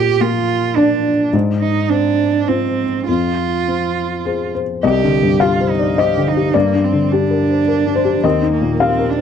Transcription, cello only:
0, 0, Header, 1, 2, 480
1, 0, Start_track
1, 0, Tempo, 562852
1, 1138, Time_signature, 3, 2, 24, 8
1, 2107, Tempo, 586510
1, 4507, Tempo, 564440
1, 7746, End_track
2, 0, Start_track
2, 0, Title_t, "Cello"
2, 0, Program_c, 0, 42
2, 0, Note_on_c, 0, 67, 81
2, 177, Note_on_c, 0, 65, 81
2, 190, Note_off_c, 0, 67, 0
2, 650, Note_on_c, 0, 62, 68
2, 663, Note_off_c, 0, 65, 0
2, 1133, Note_off_c, 0, 62, 0
2, 1374, Note_on_c, 0, 63, 64
2, 1616, Note_on_c, 0, 62, 67
2, 1629, Note_off_c, 0, 63, 0
2, 2114, Note_on_c, 0, 60, 63
2, 2127, Note_off_c, 0, 62, 0
2, 2596, Note_off_c, 0, 60, 0
2, 2601, Note_on_c, 0, 65, 70
2, 3777, Note_off_c, 0, 65, 0
2, 4047, Note_on_c, 0, 67, 76
2, 4511, Note_on_c, 0, 65, 63
2, 4524, Note_off_c, 0, 67, 0
2, 4760, Note_on_c, 0, 63, 58
2, 4773, Note_off_c, 0, 65, 0
2, 5008, Note_on_c, 0, 67, 59
2, 5021, Note_off_c, 0, 63, 0
2, 5251, Note_on_c, 0, 63, 60
2, 5263, Note_off_c, 0, 67, 0
2, 5489, Note_on_c, 0, 58, 62
2, 5502, Note_off_c, 0, 63, 0
2, 5729, Note_on_c, 0, 60, 52
2, 5742, Note_off_c, 0, 58, 0
2, 5966, Note_on_c, 0, 62, 67
2, 5979, Note_off_c, 0, 60, 0
2, 6926, Note_on_c, 0, 60, 62
2, 6938, Note_off_c, 0, 62, 0
2, 7158, Note_off_c, 0, 60, 0
2, 7163, Note_on_c, 0, 58, 51
2, 7407, Note_on_c, 0, 60, 60
2, 7420, Note_off_c, 0, 58, 0
2, 7652, Note_on_c, 0, 62, 59
2, 7665, Note_off_c, 0, 60, 0
2, 7746, Note_off_c, 0, 62, 0
2, 7746, End_track
0, 0, End_of_file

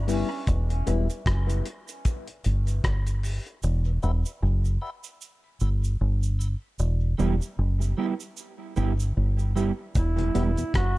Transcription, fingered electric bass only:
0, 0, Header, 1, 2, 480
1, 0, Start_track
1, 0, Tempo, 789474
1, 288, Time_signature, 4, 2, 24, 8
1, 6676, End_track
2, 0, Start_track
2, 0, Title_t, "Fingered electric bass"
2, 0, Program_c, 0, 33
2, 0, Note_on_c, 0, 31, 90
2, 134, Note_off_c, 0, 31, 0
2, 290, Note_on_c, 0, 28, 97
2, 496, Note_off_c, 0, 28, 0
2, 531, Note_on_c, 0, 28, 96
2, 649, Note_off_c, 0, 28, 0
2, 769, Note_on_c, 0, 30, 90
2, 975, Note_off_c, 0, 30, 0
2, 1494, Note_on_c, 0, 31, 74
2, 1698, Note_off_c, 0, 31, 0
2, 1728, Note_on_c, 0, 31, 82
2, 2055, Note_off_c, 0, 31, 0
2, 2212, Note_on_c, 0, 28, 99
2, 2417, Note_off_c, 0, 28, 0
2, 2453, Note_on_c, 0, 28, 102
2, 2571, Note_off_c, 0, 28, 0
2, 2691, Note_on_c, 0, 30, 94
2, 2897, Note_off_c, 0, 30, 0
2, 3412, Note_on_c, 0, 31, 75
2, 3618, Note_off_c, 0, 31, 0
2, 3654, Note_on_c, 0, 31, 85
2, 3978, Note_off_c, 0, 31, 0
2, 4133, Note_on_c, 0, 28, 91
2, 4338, Note_off_c, 0, 28, 0
2, 4374, Note_on_c, 0, 28, 99
2, 4492, Note_off_c, 0, 28, 0
2, 4613, Note_on_c, 0, 30, 92
2, 4818, Note_off_c, 0, 30, 0
2, 5336, Note_on_c, 0, 31, 77
2, 5540, Note_off_c, 0, 31, 0
2, 5575, Note_on_c, 0, 31, 85
2, 5900, Note_off_c, 0, 31, 0
2, 6054, Note_on_c, 0, 28, 93
2, 6259, Note_off_c, 0, 28, 0
2, 6296, Note_on_c, 0, 28, 96
2, 6413, Note_off_c, 0, 28, 0
2, 6532, Note_on_c, 0, 30, 85
2, 6676, Note_off_c, 0, 30, 0
2, 6676, End_track
0, 0, End_of_file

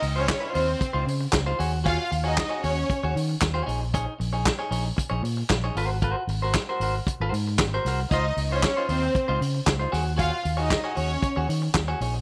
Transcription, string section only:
0, 0, Header, 1, 2, 480
1, 0, Start_track
1, 0, Tempo, 520833
1, 1708, Time_signature, 4, 2, 24, 8
1, 11254, End_track
2, 0, Start_track
2, 0, Title_t, "String section"
2, 0, Program_c, 0, 48
2, 154, Note_on_c, 0, 61, 83
2, 156, Note_on_c, 0, 73, 96
2, 485, Note_off_c, 0, 61, 0
2, 486, Note_off_c, 0, 73, 0
2, 499, Note_on_c, 0, 72, 97
2, 505, Note_on_c, 0, 60, 91
2, 954, Note_off_c, 0, 72, 0
2, 957, Note_off_c, 0, 60, 0
2, 1708, Note_on_c, 0, 65, 96
2, 1708, Note_on_c, 0, 77, 109
2, 1900, Note_off_c, 0, 65, 0
2, 1900, Note_off_c, 0, 77, 0
2, 2072, Note_on_c, 0, 63, 83
2, 2079, Note_on_c, 0, 75, 92
2, 2406, Note_off_c, 0, 63, 0
2, 2410, Note_off_c, 0, 75, 0
2, 2415, Note_on_c, 0, 61, 91
2, 2415, Note_on_c, 0, 73, 99
2, 2873, Note_off_c, 0, 61, 0
2, 2874, Note_off_c, 0, 73, 0
2, 7469, Note_on_c, 0, 63, 85
2, 7473, Note_on_c, 0, 75, 98
2, 7662, Note_off_c, 0, 63, 0
2, 7664, Note_off_c, 0, 75, 0
2, 7841, Note_on_c, 0, 61, 85
2, 7842, Note_on_c, 0, 73, 91
2, 8171, Note_off_c, 0, 61, 0
2, 8172, Note_off_c, 0, 73, 0
2, 8193, Note_on_c, 0, 60, 87
2, 8194, Note_on_c, 0, 72, 100
2, 8642, Note_off_c, 0, 60, 0
2, 8643, Note_off_c, 0, 72, 0
2, 9388, Note_on_c, 0, 77, 107
2, 9396, Note_on_c, 0, 65, 99
2, 9580, Note_off_c, 0, 77, 0
2, 9584, Note_off_c, 0, 65, 0
2, 9751, Note_on_c, 0, 63, 77
2, 9754, Note_on_c, 0, 75, 87
2, 10084, Note_off_c, 0, 63, 0
2, 10085, Note_off_c, 0, 75, 0
2, 10101, Note_on_c, 0, 73, 95
2, 10104, Note_on_c, 0, 61, 78
2, 10554, Note_off_c, 0, 73, 0
2, 10555, Note_off_c, 0, 61, 0
2, 11254, End_track
0, 0, End_of_file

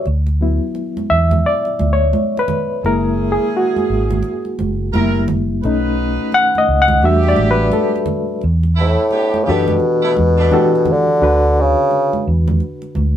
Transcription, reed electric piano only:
0, 0, Header, 1, 2, 480
1, 0, Start_track
1, 0, Tempo, 697674
1, 32, Time_signature, 4, 2, 24, 8
1, 9060, End_track
2, 0, Start_track
2, 0, Title_t, "Reed electric piano"
2, 0, Program_c, 0, 4
2, 0, Control_c, 0, 64, 127
2, 42, Control_c, 0, 64, 0
2, 159, Control_c, 0, 64, 127
2, 282, Note_on_c, 0, 54, 49
2, 289, Note_on_c, 0, 59, 46
2, 292, Note_on_c, 0, 64, 62
2, 618, Note_off_c, 0, 54, 0
2, 622, Note_off_c, 0, 59, 0
2, 623, Note_off_c, 0, 64, 0
2, 757, Note_on_c, 0, 76, 103
2, 1001, Note_off_c, 0, 76, 0
2, 1006, Note_on_c, 0, 74, 89
2, 1328, Note_off_c, 0, 74, 0
2, 1328, Note_on_c, 0, 73, 87
2, 1618, Note_off_c, 0, 73, 0
2, 1645, Note_on_c, 0, 71, 78
2, 1937, Note_off_c, 0, 71, 0
2, 1962, Control_c, 0, 64, 0
2, 1962, Note_on_c, 0, 56, 51
2, 1965, Note_on_c, 0, 58, 51
2, 1967, Note_on_c, 0, 70, 96
2, 1969, Note_on_c, 0, 64, 58
2, 2081, Control_c, 0, 64, 127
2, 2284, Note_on_c, 0, 68, 80
2, 2289, Note_off_c, 0, 70, 0
2, 2298, Note_off_c, 0, 56, 0
2, 2300, Note_off_c, 0, 58, 0
2, 2302, Note_off_c, 0, 64, 0
2, 2443, Note_off_c, 0, 68, 0
2, 2454, Note_on_c, 0, 66, 71
2, 2667, Note_off_c, 0, 66, 0
2, 3397, Note_on_c, 0, 55, 49
2, 3401, Control_c, 0, 64, 0
2, 3401, Note_on_c, 0, 58, 47
2, 3406, Note_on_c, 0, 64, 53
2, 3510, Control_c, 0, 64, 127
2, 3736, Note_off_c, 0, 55, 0
2, 3738, Note_off_c, 0, 58, 0
2, 3740, Note_off_c, 0, 64, 0
2, 3881, Control_c, 0, 64, 0
2, 3882, Note_on_c, 0, 57, 57
2, 3886, Note_on_c, 0, 61, 51
2, 3891, Note_on_c, 0, 63, 65
2, 4003, Control_c, 0, 64, 127
2, 4364, Note_on_c, 0, 78, 112
2, 4523, Note_off_c, 0, 78, 0
2, 4528, Note_on_c, 0, 75, 93
2, 4570, Note_off_c, 0, 57, 0
2, 4571, Note_off_c, 0, 61, 0
2, 4574, Note_off_c, 0, 63, 0
2, 4685, Note_off_c, 0, 75, 0
2, 4690, Note_on_c, 0, 78, 89
2, 4839, Note_on_c, 0, 55, 53
2, 4841, Control_c, 0, 64, 0
2, 4843, Note_on_c, 0, 57, 49
2, 4845, Note_on_c, 0, 62, 50
2, 4845, Note_on_c, 0, 66, 66
2, 4846, Note_off_c, 0, 78, 0
2, 4853, Note_on_c, 0, 76, 90
2, 4979, Control_c, 0, 64, 127
2, 5007, Note_off_c, 0, 76, 0
2, 5012, Note_on_c, 0, 74, 81
2, 5152, Note_off_c, 0, 74, 0
2, 5165, Note_on_c, 0, 71, 83
2, 5177, Note_off_c, 0, 55, 0
2, 5179, Note_off_c, 0, 57, 0
2, 5180, Note_off_c, 0, 62, 0
2, 5180, Note_off_c, 0, 66, 0
2, 5234, Note_off_c, 0, 71, 0
2, 5319, Note_on_c, 0, 69, 67
2, 5539, Note_off_c, 0, 69, 0
2, 5802, Control_c, 0, 64, 0
2, 5912, Control_c, 0, 64, 127
2, 6517, Note_on_c, 0, 52, 62
2, 6523, Note_on_c, 0, 62, 58
2, 6528, Note_on_c, 0, 66, 60
2, 6530, Note_on_c, 0, 67, 56
2, 6533, Note_on_c, 0, 69, 75
2, 6873, Note_off_c, 0, 52, 0
2, 6876, Note_off_c, 0, 62, 0
2, 6879, Note_off_c, 0, 66, 0
2, 6880, Note_off_c, 0, 67, 0
2, 6881, Note_off_c, 0, 69, 0
2, 7235, Note_on_c, 0, 52, 76
2, 7237, Note_on_c, 0, 62, 69
2, 7242, Note_on_c, 0, 66, 76
2, 7249, Note_on_c, 0, 67, 70
2, 7249, Note_on_c, 0, 69, 85
2, 7419, Note_off_c, 0, 52, 0
2, 7420, Note_off_c, 0, 62, 0
2, 7422, Note_off_c, 0, 66, 0
2, 7425, Note_off_c, 0, 69, 0
2, 7426, Note_off_c, 0, 67, 0
2, 7714, Note_on_c, 0, 50, 64
2, 7717, Note_on_c, 0, 62, 56
2, 7721, Control_c, 0, 64, 0
2, 7723, Note_on_c, 0, 66, 57
2, 7729, Note_on_c, 0, 71, 74
2, 7824, Control_c, 0, 64, 127
2, 7898, Note_off_c, 0, 50, 0
2, 7900, Note_off_c, 0, 62, 0
2, 7903, Note_off_c, 0, 66, 0
2, 7906, Note_off_c, 0, 71, 0
2, 9060, End_track
0, 0, End_of_file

